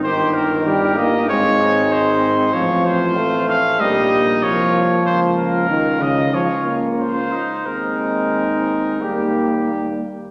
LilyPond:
<<
  \new Staff \with { instrumentName = "Trumpet" } { \time 4/4 \key ees \mixolydian \tempo 4 = 94 c''8 bes'4 ees''8 des''4 c''4 | des''8 c''4 f''8 ees''4 des''4 | c''8 bes'4 ees''8 des''8 r8 c''4 | bes'2. r4 | }
  \new Staff \with { instrumentName = "Trumpet" } { \time 4/4 \key ees \mixolydian g'4 g'4 f'8 ees'4. | f'4 f'8 des'8 ees'4 f'4 | f'2 f'8 r8 f'8 ees'8 | ees'2 g'4. r8 | }
  \new Staff \with { instrumentName = "French horn" } { \time 4/4 \key ees \mixolydian ees'2 c'2~ | c'4 c'4 bes8 bes4. | bes4 ees'4 des'4. r8 | c'2 bes4. r8 | }
  \new Staff \with { instrumentName = "Trombone" } { \clef bass \time 4/4 \key ees \mixolydian ees4 g8 bes8 aes2 | f4 a4 g4 f4~ | f4 ees8 des8 f8 bes4 r8 | aes2 g4. r8 | }
  \new Staff \with { instrumentName = "Tuba" } { \clef bass \time 4/4 \key ees \mixolydian g,,2 aes,,2 | a,,2 bes,,4 c,4 | des,2.~ des,8 r8 | ees,2 ees,4. r8 | }
>>